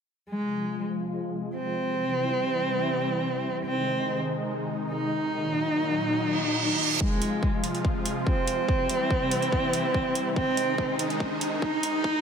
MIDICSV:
0, 0, Header, 1, 6, 480
1, 0, Start_track
1, 0, Tempo, 419580
1, 336, Time_signature, 4, 2, 24, 8
1, 13968, End_track
2, 0, Start_track
2, 0, Title_t, "Cello"
2, 0, Program_c, 0, 42
2, 338, Note_on_c, 0, 56, 87
2, 965, Note_off_c, 0, 56, 0
2, 1777, Note_on_c, 0, 60, 99
2, 4085, Note_off_c, 0, 60, 0
2, 4176, Note_on_c, 0, 60, 95
2, 4805, Note_off_c, 0, 60, 0
2, 5618, Note_on_c, 0, 63, 102
2, 7925, Note_off_c, 0, 63, 0
2, 8016, Note_on_c, 0, 56, 97
2, 8645, Note_off_c, 0, 56, 0
2, 9457, Note_on_c, 0, 60, 100
2, 11765, Note_off_c, 0, 60, 0
2, 11857, Note_on_c, 0, 60, 105
2, 12485, Note_off_c, 0, 60, 0
2, 13296, Note_on_c, 0, 63, 106
2, 13968, Note_off_c, 0, 63, 0
2, 13968, End_track
3, 0, Start_track
3, 0, Title_t, "Supersaw synth"
3, 0, Program_c, 1, 81
3, 336, Note_on_c, 1, 53, 75
3, 336, Note_on_c, 1, 56, 79
3, 336, Note_on_c, 1, 65, 89
3, 337, Note_on_c, 1, 48, 81
3, 2237, Note_off_c, 1, 53, 0
3, 2237, Note_off_c, 1, 56, 0
3, 2237, Note_off_c, 1, 65, 0
3, 2256, Note_on_c, 1, 52, 82
3, 2256, Note_on_c, 1, 64, 88
3, 2257, Note_on_c, 1, 55, 76
3, 4157, Note_off_c, 1, 52, 0
3, 4157, Note_off_c, 1, 55, 0
3, 4157, Note_off_c, 1, 64, 0
3, 4176, Note_on_c, 1, 56, 79
3, 4177, Note_on_c, 1, 51, 74
3, 4177, Note_on_c, 1, 63, 91
3, 6051, Note_off_c, 1, 48, 0
3, 6077, Note_off_c, 1, 56, 0
3, 6097, Note_on_c, 1, 54, 80
3, 6098, Note_on_c, 1, 46, 86
3, 7978, Note_off_c, 1, 51, 0
3, 7978, Note_off_c, 1, 63, 0
3, 7997, Note_off_c, 1, 54, 0
3, 7998, Note_off_c, 1, 46, 0
3, 8013, Note_on_c, 1, 56, 75
3, 8014, Note_on_c, 1, 48, 86
3, 8014, Note_on_c, 1, 65, 94
3, 8015, Note_on_c, 1, 53, 82
3, 9916, Note_off_c, 1, 53, 0
3, 9916, Note_off_c, 1, 56, 0
3, 9916, Note_off_c, 1, 65, 0
3, 9935, Note_on_c, 1, 64, 97
3, 9936, Note_on_c, 1, 52, 80
3, 9936, Note_on_c, 1, 55, 81
3, 11837, Note_off_c, 1, 52, 0
3, 11837, Note_off_c, 1, 55, 0
3, 11837, Note_off_c, 1, 64, 0
3, 11857, Note_on_c, 1, 51, 83
3, 11857, Note_on_c, 1, 56, 77
3, 11857, Note_on_c, 1, 63, 100
3, 13729, Note_off_c, 1, 48, 0
3, 13757, Note_off_c, 1, 56, 0
3, 13777, Note_on_c, 1, 46, 87
3, 13777, Note_on_c, 1, 54, 77
3, 13968, Note_off_c, 1, 46, 0
3, 13968, Note_off_c, 1, 51, 0
3, 13968, Note_off_c, 1, 54, 0
3, 13968, Note_off_c, 1, 63, 0
3, 13968, End_track
4, 0, Start_track
4, 0, Title_t, "Reverse cymbal"
4, 0, Program_c, 2, 119
4, 7056, Note_on_c, 2, 60, 72
4, 8016, Note_off_c, 2, 60, 0
4, 13968, End_track
5, 0, Start_track
5, 0, Title_t, "Riser"
5, 0, Program_c, 3, 103
5, 8016, Note_on_c, 3, 60, 77
5, 13968, Note_off_c, 3, 60, 0
5, 13968, End_track
6, 0, Start_track
6, 0, Title_t, "Drums"
6, 8015, Note_on_c, 9, 36, 92
6, 8130, Note_off_c, 9, 36, 0
6, 8255, Note_on_c, 9, 42, 83
6, 8369, Note_off_c, 9, 42, 0
6, 8495, Note_on_c, 9, 36, 99
6, 8610, Note_off_c, 9, 36, 0
6, 8736, Note_on_c, 9, 42, 80
6, 8850, Note_off_c, 9, 42, 0
6, 8861, Note_on_c, 9, 42, 37
6, 8975, Note_off_c, 9, 42, 0
6, 8976, Note_on_c, 9, 36, 93
6, 9090, Note_off_c, 9, 36, 0
6, 9215, Note_on_c, 9, 42, 75
6, 9330, Note_off_c, 9, 42, 0
6, 9456, Note_on_c, 9, 36, 90
6, 9570, Note_off_c, 9, 36, 0
6, 9695, Note_on_c, 9, 42, 76
6, 9810, Note_off_c, 9, 42, 0
6, 9936, Note_on_c, 9, 36, 92
6, 10050, Note_off_c, 9, 36, 0
6, 10175, Note_on_c, 9, 42, 85
6, 10290, Note_off_c, 9, 42, 0
6, 10416, Note_on_c, 9, 36, 95
6, 10530, Note_off_c, 9, 36, 0
6, 10656, Note_on_c, 9, 42, 80
6, 10770, Note_off_c, 9, 42, 0
6, 10781, Note_on_c, 9, 42, 36
6, 10896, Note_off_c, 9, 42, 0
6, 10896, Note_on_c, 9, 36, 89
6, 11010, Note_off_c, 9, 36, 0
6, 11136, Note_on_c, 9, 42, 82
6, 11251, Note_off_c, 9, 42, 0
6, 11376, Note_on_c, 9, 36, 88
6, 11490, Note_off_c, 9, 36, 0
6, 11616, Note_on_c, 9, 42, 81
6, 11731, Note_off_c, 9, 42, 0
6, 11856, Note_on_c, 9, 36, 97
6, 11970, Note_off_c, 9, 36, 0
6, 12096, Note_on_c, 9, 42, 84
6, 12210, Note_off_c, 9, 42, 0
6, 12336, Note_on_c, 9, 36, 106
6, 12450, Note_off_c, 9, 36, 0
6, 12576, Note_on_c, 9, 42, 82
6, 12690, Note_off_c, 9, 42, 0
6, 12702, Note_on_c, 9, 42, 36
6, 12816, Note_off_c, 9, 42, 0
6, 12816, Note_on_c, 9, 36, 93
6, 12930, Note_off_c, 9, 36, 0
6, 13056, Note_on_c, 9, 42, 82
6, 13170, Note_off_c, 9, 42, 0
6, 13296, Note_on_c, 9, 36, 101
6, 13410, Note_off_c, 9, 36, 0
6, 13536, Note_on_c, 9, 42, 77
6, 13650, Note_off_c, 9, 42, 0
6, 13776, Note_on_c, 9, 36, 104
6, 13890, Note_off_c, 9, 36, 0
6, 13968, End_track
0, 0, End_of_file